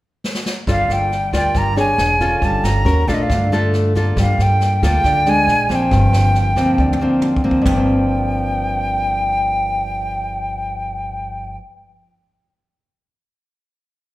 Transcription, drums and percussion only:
0.24 snare
0.35 snare
0.46 snare
0.67 kick, cross-stick, snare
0.89 snare
1.12 snare
1.33 kick, cross-stick, snare
1.55 kick, snare
1.77 snare
1.98 cross-stick, snare
2.20 kick, snare
2.41 kick, snare
2.64 cross-stick, snare
2.87 snare
3.08 kick, snare
3.30 kick, cross-stick, snare
3.52 snare
3.73 snare
3.95 kick, snare
4.17 kick, cross-stick, snare
4.39 snare
4.61 snare
4.83 kick, cross-stick, snare
5.04 kick, snare
5.26 snare
5.48 cross-stick, snare
5.70 kick, snare
5.91 kick, snare
6.13 cross-stick, snare
6.35 snare
6.56 kick, snare
6.78 kick
6.93 high tom
7.22 mid tom
7.36 kick
7.51 kick
7.66 kick, floor tom, splash

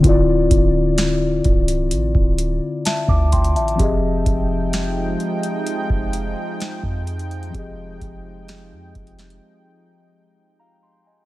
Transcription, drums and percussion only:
0.04 kick, closed hi-hat
0.51 kick, closed hi-hat
0.98 snare, closed hi-hat
1.44 kick, closed hi-hat
1.68 closed hi-hat
1.91 closed hi-hat
2.15 kick
2.38 closed hi-hat
2.85 snare, closed hi-hat
3.08 kick
3.32 kick, closed hi-hat, open hi-hat
3.44 closed hi-hat
3.56 closed hi-hat
3.68 closed hi-hat
3.79 kick, closed hi-hat
4.26 kick, closed hi-hat
4.73 snare, closed hi-hat
5.20 closed hi-hat
5.43 closed hi-hat
5.67 closed hi-hat
5.90 kick
6.13 closed hi-hat
6.60 snare, closed hi-hat
6.83 kick
7.07 closed hi-hat, open hi-hat
7.19 closed hi-hat
7.31 closed hi-hat
7.43 closed hi-hat
7.54 kick, closed hi-hat
8.01 kick, closed hi-hat
8.48 snare, closed hi-hat
8.95 kick, closed hi-hat
9.07 closed hi-hat
9.19 snare, closed hi-hat
9.30 closed hi-hat

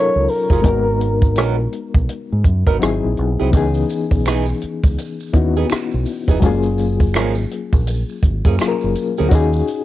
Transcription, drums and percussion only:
0.28 open hi-hat
0.50 kick
0.64 kick, closed hi-hat
1.01 closed hi-hat
1.22 kick
1.36 cross-stick, closed hi-hat
1.73 closed hi-hat
1.94 kick
2.09 closed hi-hat
2.44 kick, closed hi-hat
2.67 kick
2.82 cross-stick, closed hi-hat
3.17 closed hi-hat
3.53 kick, closed hi-hat, maracas
3.74 maracas
3.89 closed hi-hat, maracas
4.11 kick, maracas
4.25 finger snap, cross-stick, closed hi-hat, maracas
4.46 maracas
4.62 closed hi-hat
4.83 kick, maracas
4.98 closed hi-hat, maracas
5.20 maracas
5.33 kick, closed hi-hat
5.56 maracas
5.70 finger snap, cross-stick, closed hi-hat, maracas
5.91 maracas
6.06 open hi-hat, maracas
6.28 kick, maracas
6.42 kick, closed hi-hat, maracas
6.63 maracas
6.78 closed hi-hat, maracas
7.00 kick, maracas
7.14 finger snap, cross-stick, closed hi-hat, maracas
7.35 maracas
7.51 closed hi-hat
7.73 kick, maracas
7.87 closed hi-hat, maracas
8.09 maracas
8.23 kick, closed hi-hat
8.45 kick, maracas
8.59 finger snap, cross-stick, closed hi-hat, maracas
8.81 maracas
8.95 closed hi-hat, maracas
9.17 maracas
9.31 kick, closed hi-hat, maracas
9.53 maracas
9.68 closed hi-hat, maracas

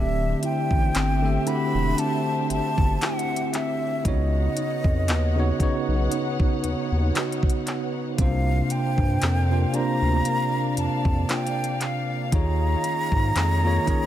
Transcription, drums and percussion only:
0.43 closed hi-hat
0.71 kick
0.95 clap, closed hi-hat
1.47 closed hi-hat
1.98 closed hi-hat
2.50 closed hi-hat
2.78 kick
3.02 clap, closed hi-hat
3.19 closed hi-hat
3.36 closed hi-hat
3.54 clap, closed hi-hat
4.05 kick, closed hi-hat
4.57 closed hi-hat
4.84 kick
5.08 clap, closed hi-hat
5.60 kick, closed hi-hat
6.12 closed hi-hat
6.40 kick
6.64 closed hi-hat
7.15 clap, closed hi-hat
7.32 closed hi-hat
7.43 kick
7.50 closed hi-hat
7.67 clap, closed hi-hat
8.18 kick, closed hi-hat
8.70 closed hi-hat
8.98 kick
9.22 clap, closed hi-hat
9.74 closed hi-hat
10.25 closed hi-hat
10.77 closed hi-hat
11.05 kick
11.29 clap, closed hi-hat
11.47 closed hi-hat
11.64 closed hi-hat
11.81 clap, closed hi-hat
12.32 kick, closed hi-hat
12.84 closed hi-hat
13.12 kick
13.36 clap, closed hi-hat
13.87 kick, closed hi-hat

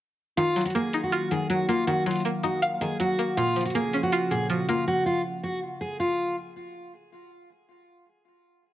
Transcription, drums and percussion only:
0.37 closed hi-hat
0.56 closed hi-hat
0.61 closed hi-hat
0.66 closed hi-hat
0.70 closed hi-hat
0.75 closed hi-hat
0.93 closed hi-hat
1.12 closed hi-hat
1.31 closed hi-hat
1.50 closed hi-hat
1.69 closed hi-hat
1.87 closed hi-hat
2.06 closed hi-hat
2.11 closed hi-hat
2.16 closed hi-hat
2.20 closed hi-hat
2.25 closed hi-hat
2.43 closed hi-hat
2.62 closed hi-hat
2.81 closed hi-hat
3.00 closed hi-hat
3.19 closed hi-hat
3.37 closed hi-hat
3.56 closed hi-hat
3.61 closed hi-hat
3.66 closed hi-hat
3.70 closed hi-hat
3.75 closed hi-hat
3.93 closed hi-hat
4.12 closed hi-hat
4.31 closed hi-hat
4.50 closed hi-hat
4.69 closed hi-hat

